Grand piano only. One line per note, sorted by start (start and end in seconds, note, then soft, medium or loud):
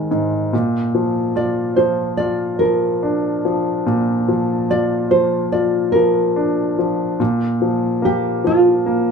0.00 0.55 D#3 soft
0.00 0.49 G#3 soft
0.00 0.55 C4 soft
0.11 0.52 G#2 medium
0.53 3.82 A#2 medium
0.95 1.76 F3 soft
1.36 2.18 F4 medium
1.78 2.59 F3 soft
2.20 3.82 F4 medium
2.61 3.44 F3 soft
3.03 4.65 D4 medium
3.45 4.27 F3 soft
3.86 7.16 A#2 medium
4.28 5.10 F3 soft
4.70 5.51 F4 medium
5.11 5.94 F3 soft
5.53 7.16 F4 medium
5.96 6.77 F3 soft
6.36 7.17 D4 medium
6.79 7.19 F3 soft
7.20 9.11 A#2 medium
7.62 8.43 F3 soft
8.02 8.85 A#3 medium
8.44 9.11 F3 medium
8.86 9.11 A#3 medium